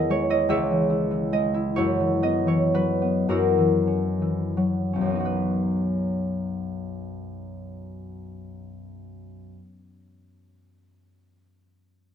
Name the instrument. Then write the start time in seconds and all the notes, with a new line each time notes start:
harp
Already playing: E2 E3 B3 E4 G#4 D#5
0.10 G#3 C#5
0.30 E4 D#5
0.49 C#2 G#4 C#5 E5
0.71 E3
0.90 E4
1.11 E3
1.33 G#3 D#5
1.54 E4
1.76 F#2 E4 F#4 C#5
2.00 E3
2.22 B3 D#5
2.47 E3 C#5
2.74 F#3 B4
3.02 B3
3.29 F#2 E4 F#4 A#4
3.58 E3
3.87 C#4
4.22 E3
4.57 F#3
4.93 B1 C#4
5.01 F#2
5.06 F#3
5.10 B3
5.15 D#4
5.20 F#4
5.25 B4